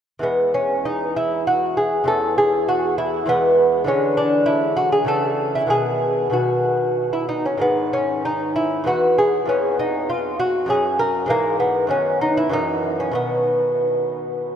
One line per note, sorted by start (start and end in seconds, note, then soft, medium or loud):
0.19 2.02 E2 soft
0.19 2.03 E3 soft
0.19 2.04 G#3 soft
0.19 0.53 B3 soft
0.54 0.84 C#4 medium
0.85 1.15 D#4 soft
1.17 1.46 E4 medium
1.47 1.76 F#4 medium
1.77 2.07 G#4 medium
2.04 3.24 E2 soft
2.04 3.25 E3 soft
2.04 3.25 C#4 soft
2.04 2.37 A4 medium
2.38 2.68 G#4 medium
2.69 2.98 F#4 medium
2.98 3.28 E4 medium
3.26 3.85 E2 soft
3.26 3.85 E3 soft
3.26 3.86 G#3 soft
3.26 3.86 B3 medium
3.84 5.03 D3 soft
3.84 5.04 E3 soft
3.84 5.05 G#3 soft
3.84 4.17 C#4 medium
4.17 4.46 D4 medium
4.46 4.76 E4 medium
4.77 4.92 F#4 medium
4.92 5.08 G#4 medium
5.05 5.66 C#3 soft
5.05 5.68 E3 soft
5.05 5.68 A3 soft
5.05 5.53 A4 medium
5.55 5.71 E4 soft
5.67 6.29 B2 soft
5.67 6.30 D#3 soft
5.67 6.31 B3 soft
5.67 6.31 G#4 medium
6.30 7.55 B2 soft
6.30 7.56 D#3 soft
6.30 7.57 B3 soft
6.30 7.10 F#4 soft
7.13 7.28 E4 soft
7.29 7.45 D#4 medium
7.46 7.61 C#4 soft
7.58 8.81 G#2 soft
7.58 8.82 D#3 soft
7.58 7.92 B3 medium
7.93 8.23 C#4 medium
8.25 8.55 D#4 medium
8.56 8.86 E4 medium
8.84 9.45 E2 soft
8.84 9.45 E3 soft
8.84 9.46 B3 soft
8.84 9.17 F#4 medium
9.18 9.47 G#4 medium
9.46 10.64 F2 soft
9.46 10.66 B3 soft
9.46 9.78 C#4 medium
9.79 10.08 D#4 medium
10.10 10.38 F4 medium
10.40 10.68 F#4 medium
10.66 11.27 F#2 soft
10.66 11.27 F#3 soft
10.66 11.28 C#4 soft
10.66 10.99 G#4 medium
10.99 11.29 A#4 medium
11.26 11.87 G#2 soft
11.26 11.88 E3 soft
11.26 11.89 G#3 soft
11.30 11.59 A#3 medium
11.60 11.88 B3 medium
11.87 12.48 F#2 soft
11.87 12.49 D#3 soft
11.87 12.49 B3 soft
11.87 12.20 C#4 medium
12.21 12.37 D#4 medium
12.37 12.52 E4 medium
12.49 13.11 F#2 soft
12.49 13.12 E3 soft
12.49 13.13 A#3 soft
12.49 12.97 D#4 medium
13.00 13.15 C#4 soft
13.11 14.56 B2 soft
13.11 14.56 D#3 soft
13.11 14.56 B3 medium